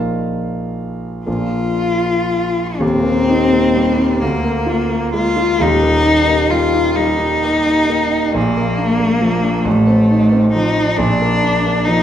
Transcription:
0.00 1.22 A#1 soft
0.00 1.22 F3 soft
0.00 1.23 A#3 soft
0.00 1.23 D#4 soft
0.00 1.22 F4 medium
0.00 1.22 A#4 soft
0.00 1.25 F5 medium
1.26 2.77 A#1 soft
1.26 2.77 F3 soft
1.26 2.78 A#3 soft
1.26 2.78 D4 soft
1.26 2.83 F4 medium
2.79 4.17 D#1 medium
2.79 4.17 D#2 medium
2.79 4.23 C4 loud
3.03 3.42 A#3 medium
3.29 3.66 D#4 medium
3.52 3.89 A#3 medium
3.74 4.12 G3 medium
3.96 4.21 D#4 medium
4.21 5.57 D2 medium
4.21 5.14 A#3 medium
4.44 4.82 A#3 medium
4.66 5.05 F4 medium
4.89 5.27 A#3 medium
5.13 5.51 G#3 medium
5.13 5.63 F4 medium
5.36 5.61 F4 medium
5.59 8.31 D#1 medium
5.59 8.31 D#2 medium
5.59 6.52 D#4 loud
5.82 6.19 A#3 medium
6.05 6.42 D#4 medium
6.28 6.64 A#3 medium
6.50 6.88 G3 medium
6.50 6.97 F4 medium
6.73 7.11 D#4 medium
6.96 7.34 G3 medium
6.96 8.35 D#4 medium
7.18 7.57 D#4 medium
7.44 7.82 A#3 medium
7.66 8.04 D#4 medium
7.89 8.26 A#3 medium
8.10 8.34 D#4 medium
8.34 9.61 A#1 medium
8.34 9.67 A#3 loud
8.57 8.92 A#3 medium
8.78 9.13 D4 medium
8.99 9.35 A#3 medium
9.21 9.56 F3 medium
9.43 9.65 D4 medium
9.65 10.94 A1 medium
9.65 10.52 A3 medium
9.87 10.23 C4 medium
10.11 10.46 D#4 medium
10.32 10.68 C4 medium
10.53 10.90 F3 medium
10.53 10.99 D#4 medium
10.77 10.99 D#4 medium
10.98 12.03 A#1 medium
10.98 11.86 D4 loud
11.21 11.55 A#3 medium
11.42 11.77 D4 medium
11.66 11.99 A#3 medium
11.85 12.03 F3 medium
11.85 12.03 D#4 loud

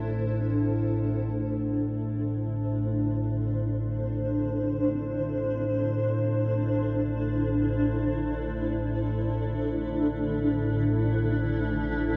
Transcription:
0.00 0.40 A1 medium
0.00 0.41 A2 medium
0.00 0.42 D4 medium
0.00 0.43 E4 medium
0.00 0.42 A4 medium
0.00 0.43 C5 medium
0.41 12.17 A1 medium
0.41 12.17 A2 medium
0.41 12.17 D4 medium
0.41 12.17 D4 loud
1.05 12.17 E4 medium
1.41 12.14 C5 medium
2.51 12.17 A4 medium
11.75 12.17 D5 medium

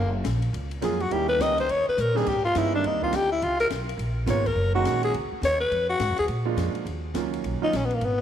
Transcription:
0.00 0.23 F#1 medium
0.00 0.15 A#3 medium
0.24 0.52 A#1 medium
0.24 snare medium
0.24 hi-hat pedal medium
0.24 ride medium
0.42 ride soft
0.53 0.82 C#2 medium
0.53 ride medium
0.71 ride soft
0.82 1.10 F2 medium
0.82 0.98 F#3 medium
0.82 0.99 G#3 medium
0.82 0.99 A#3 medium
0.82 0.99 C#4 medium
0.82 0.99 F4 medium
0.82 1.03 G#4 medium
0.82 snare medium
0.82 hi-hat pedal medium
0.82 ride medium
1.00 1.14 F#4 medium
1.00 ride soft
1.10 1.38 D#2 medium
1.10 1.39 D#3 medium
1.10 1.39 G3 medium
1.10 1.39 A#3 medium
1.10 1.40 C#4 medium
1.10 1.40 E4 medium
1.10 1.28 G4 medium
1.10 ride medium
1.29 1.43 B4 medium
1.39 1.68 C#2 medium
1.39 1.57 D#3 medium
1.39 1.57 G3 medium
1.39 1.57 A#3 medium
1.39 1.57 C#4 medium
1.39 1.57 D#4 medium
1.39 1.59 D#5 medium
1.39 snare medium
1.39 hi-hat pedal medium
1.39 ride medium
1.58 1.73 C5 medium
1.58 ride medium
1.69 1.86 D#2 medium
1.69 1.88 C#5 loud
1.69 ride medium
1.87 2.02 B4 medium
1.87 muted upright bass stroke soft
1.97 2.26 A#2 medium
1.97 2.19 A#4 medium
1.97 hi-hat pedal medium
2.15 2.25 D#3 medium
2.15 2.26 G3 medium
2.15 2.26 A#3 medium
2.15 2.26 C4 medium
2.15 2.26 D4 medium
2.15 2.30 G#4 medium
2.15 snare medium
2.26 2.55 G#2 medium
2.26 2.44 G4 medium
2.26 kick medium
2.26 crash medium
2.45 2.59 F4 medium
2.55 2.83 G2 medium
2.55 2.72 E3 medium
2.55 2.72 G#3 medium
2.55 2.72 B3 medium
2.55 2.72 C#4 medium
2.55 2.72 D#4 medium
2.55 2.74 E4 medium
2.55 snare medium
2.55 hi-hat pedal soft
2.55 ride medium
2.74 2.99 D#3 medium
2.74 2.99 G3 medium
2.74 2.99 A#3 medium
2.74 2.99 C4 medium
2.74 2.88 D4 medium
2.74 2.99 D4 medium
2.84 3.12 D#2 medium
2.84 3.03 D#4 medium
2.84 ride medium
3.02 3.12 D#3 medium
3.02 3.12 G3 medium
3.02 3.12 A#3 medium
3.02 3.12 C4 medium
3.02 3.12 D4 medium
3.02 3.17 F4 medium
3.02 kick medium
3.12 3.40 D2 loud
3.12 3.31 G4 medium
3.12 snare medium
3.12 hi-hat pedal medium
3.12 ride medium
3.32 3.45 E4 medium
3.42 3.70 C#2 medium
3.42 3.60 F4 medium
3.42 ride medium
3.60 3.67 A#4 medium
3.60 ride soft
3.70 3.97 B1 medium
3.70 snare medium
3.70 hi-hat pedal medium
3.70 ride medium
3.89 ride medium
3.97 4.26 A#1 medium
3.97 ride medium
4.26 4.55 G#1 loud
4.26 4.43 D#3 medium
4.26 4.43 G#3 medium
4.26 4.44 A#3 medium
4.26 4.44 B3 medium
4.26 4.44 F4 medium
4.26 4.48 C#5 medium
4.26 snare medium
4.26 hi-hat pedal medium
4.26 ride medium
4.46 4.74 A#4 medium
4.46 kick medium
4.46 crash medium
4.55 4.84 F#1 medium
4.75 5.12 D#3 medium
4.75 5.12 G#3 medium
4.75 5.12 A#3 medium
4.75 5.12 C#4 medium
4.75 5.01 F#4 medium
4.75 5.12 F#4 loud
4.85 5.13 A#1 medium
4.85 snare medium
4.85 hi-hat pedal medium
4.85 ride medium
5.03 5.14 G#4 medium
5.03 ride medium
5.14 5.31 C#2 medium
5.14 ride medium
5.31 muted upright bass stroke soft
5.42 5.70 D#2 loud
5.42 5.60 C#5 loud
5.42 snare medium
5.42 hi-hat pedal medium
5.42 ride medium
5.61 5.87 B4 medium
5.71 5.99 F2 medium
5.71 ride medium
5.90 6.16 F#4 medium
6.00 6.09 G#2 medium
6.00 snare medium
6.00 hi-hat pedal medium
6.00 ride medium
6.09 6.18 F2 medium
6.18 6.27 D#2 medium
6.18 6.25 G#4 medium
6.18 ride medium
6.28 6.56 A#2 medium
6.28 ride medium
6.45 6.84 F3 medium
6.45 6.84 G#3 medium
6.45 6.84 A#3 medium
6.45 6.84 D4 medium
6.45 6.84 F4 medium
6.56 6.74 F2 medium
6.56 snare medium
6.56 hi-hat pedal medium
6.56 ride medium
6.74 muted upright bass stroke soft
6.74 ride soft
6.85 7.13 D#2 medium
6.85 ride medium
7.14 7.42 C#2 medium
7.14 7.58 D#3 medium
7.14 7.58 F#3 medium
7.14 7.58 A#3 medium
7.14 7.58 C#4 medium
7.14 7.58 F4 medium
7.14 snare medium
7.14 hi-hat pedal medium
7.14 ride medium
7.33 ride medium
7.44 7.61 B1 medium
7.44 ride medium
7.62 7.72 D#3 medium
7.62 7.72 F#3 medium
7.62 7.72 A#3 medium
7.62 7.72 C#4 medium
7.62 7.77 D#4 medium
7.62 7.72 F4 medium
7.72 8.00 A#1 medium
7.72 7.87 C#4 medium
7.72 snare medium
7.72 hi-hat pedal medium
7.72 ride medium
7.85 7.96 B3 medium
7.91 8.06 A#3 medium
7.91 ride soft
8.01 8.21 G#1 medium
8.01 8.20 B3 medium
8.01 ride medium

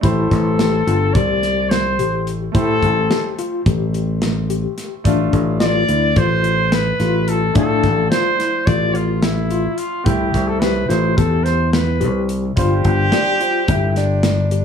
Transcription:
0.01 0.28 A1 medium
0.01 2.49 A3 medium
0.01 0.47 E4 medium
0.01 2.50 G4 medium
0.01 1.15 A4 medium
0.01 2.51 C5 medium
0.01 kick loud
0.01 closed hi-hat medium
0.31 0.81 A1 medium
0.31 kick medium
0.31 snare soft
0.31 closed hi-hat medium
0.59 0.81 G4 medium
0.59 snare loud
0.59 closed hi-hat medium
0.87 1.12 G1 medium
0.87 1.09 F4 medium
0.87 closed hi-hat medium
1.14 1.99 C2 loud
1.14 1.59 G4 medium
1.14 1.71 D5 loud
1.14 kick loud
1.14 closed hi-hat medium
1.43 snare soft
1.43 closed hi-hat medium
1.70 2.26 C5 medium
1.70 snare loud
1.70 closed hi-hat medium
1.99 2.48 A1 medium
1.99 2.43 G4 medium
1.99 closed hi-hat medium
2.27 closed hi-hat medium
2.52 2.84 A2 medium
2.52 5.00 A3 medium
2.52 2.98 E4 medium
2.52 5.01 G4 medium
2.52 3.34 A4 loud
2.52 5.02 C5 medium
2.52 kick loud
2.52 closed hi-hat medium
2.83 3.07 A1 medium
2.83 kick medium
2.83 closed hi-hat soft
3.10 3.32 G4 medium
3.10 snare loud
3.10 closed hi-hat medium
3.39 3.60 F4 medium
3.39 closed hi-hat medium
3.66 4.65 A1 loud
3.66 4.10 G4 medium
3.66 kick loud
3.66 closed hi-hat medium
3.94 closed hi-hat medium
4.22 snare loud
4.22 closed hi-hat medium
4.50 4.93 G4 medium
4.50 closed hi-hat medium
4.78 snare soft
4.78 closed hi-hat medium
5.04 5.30 A1 medium
5.04 7.51 A3 medium
5.04 5.48 D4 medium
5.04 7.52 D4 medium
5.04 7.53 F4 medium
5.04 kick loud
5.04 closed hi-hat medium
5.33 5.83 A1 medium
5.33 kick medium
5.33 closed hi-hat medium
5.60 5.82 F4 medium
5.60 6.19 D5 loud
5.60 snare medium
5.60 closed hi-hat medium
5.88 6.14 D2 medium
5.88 6.10 E4 medium
5.88 closed hi-hat medium
6.16 6.91 A1 medium
6.16 6.60 F4 medium
6.16 6.75 C5 loud
6.16 kick loud
6.16 snare soft
6.16 closed hi-hat medium
6.44 closed hi-hat medium
6.72 7.30 B4 loud
6.72 snare loud
6.72 closed hi-hat medium
7.00 7.50 A1 medium
7.00 7.44 F4 medium
7.00 snare soft
7.00 closed hi-hat medium
7.28 7.56 A4 medium
7.28 closed hi-hat medium
7.54 7.85 A2 medium
7.54 10.03 F3 medium
7.54 10.01 A3 medium
7.54 10.02 D4 medium
7.54 7.99 D4 medium
7.54 8.08 A4 loud
7.54 kick loud
7.54 closed hi-hat medium
7.83 8.09 A1 medium
7.83 kick medium
7.83 snare soft
7.83 closed hi-hat medium
8.10 8.33 F4 medium
8.10 8.68 C5 loud
8.10 snare loud
8.10 closed hi-hat medium
8.39 8.61 E4 medium
8.39 snare soft
8.39 closed hi-hat medium
8.66 9.66 A1 loud
8.66 9.11 F4 medium
8.66 8.96 D5 loud
8.66 kick loud
8.66 closed hi-hat medium
8.95 9.23 F4 medium
8.95 closed hi-hat medium
9.22 9.79 E4 medium
9.22 snare loud
9.22 closed hi-hat medium
9.50 9.94 F4 medium
9.50 closed hi-hat medium
9.77 10.06 F4 medium
9.77 closed hi-hat medium
10.04 10.31 C2 medium
10.04 12.52 C3 medium
10.04 12.52 A3 medium
10.04 10.50 E4 medium
10.04 12.53 E4 medium
10.04 10.49 G4 medium
10.04 kick loud
10.04 closed hi-hat medium
10.34 10.84 C2 medium
10.34 kick medium
10.34 snare soft
10.34 closed hi-hat medium
10.47 10.61 A4 medium
10.59 10.84 G4 medium
10.59 10.90 B4 medium
10.59 snare loud
10.59 closed hi-hat medium
10.88 11.15 A1 medium
10.88 11.11 F4 medium
10.88 11.18 C5 medium
10.88 snare soft
10.88 closed hi-hat medium
11.17 12.02 E2 medium
11.17 11.61 G4 medium
11.17 11.45 A4 medium
11.17 kick loud
11.17 closed hi-hat medium
11.44 11.72 C5 medium
11.44 snare soft
11.44 closed hi-hat medium
11.72 12.25 B4 medium
11.72 snare loud
11.72 closed hi-hat medium
12.01 12.51 C2 medium
12.01 12.44 G4 medium
12.01 closed hi-hat medium
12.29 closed hi-hat medium
12.56 12.82 G1 medium
12.56 14.65 G3 medium
12.56 13.00 F4 medium
12.56 14.65 F4 medium
12.56 14.48 G4 loud
12.56 14.65 C5 medium
12.56 kick loud
12.56 closed hi-hat medium
12.85 13.10 G1 medium
12.85 kick medium
12.85 closed hi-hat medium
13.12 13.43 D4 loud
13.12 13.35 G4 medium
13.12 snare loud
13.12 closed hi-hat medium
13.40 13.71 C4 medium
13.40 13.62 F4 medium
13.40 closed hi-hat medium
13.68 14.65 G1 loud
13.68 13.96 E4 loud
13.68 14.11 G4 medium
13.68 kick loud
13.68 closed hi-hat medium
13.96 14.65 D4 loud
13.96 snare soft
13.96 closed hi-hat medium
14.23 snare loud
14.23 closed hi-hat medium
14.51 14.65 G4 medium
14.51 closed hi-hat medium

